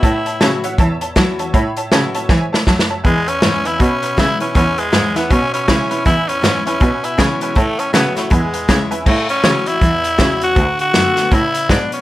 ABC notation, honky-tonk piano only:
X:1
M:4/4
L:1/8
Q:"Swing" 1/4=160
K:A
V:1 name="Honky-tonk piano"
[cea] [cea] [cea] [cef] [cea] [cea] [cea] [cea] | [ceb] [cea] [cea] [cea] [ceg] [cea] [cea] [cea] | [Beg] [Beg] [Beg] [Beg] [Beb] [Beb] [Beb] [Beg] | [Beg] [Beg] [Beg] [Beg] [Beg] [Beb] [Beg] [Beb] |
[Beg] [Beb] [Beg] [Beg] [Beg] [Beg] [Beg] [Beg] | [cea] [cea] [cea] [ceb] [Beg] [Beg] [Beg] [Beg] | z8 | z8 |]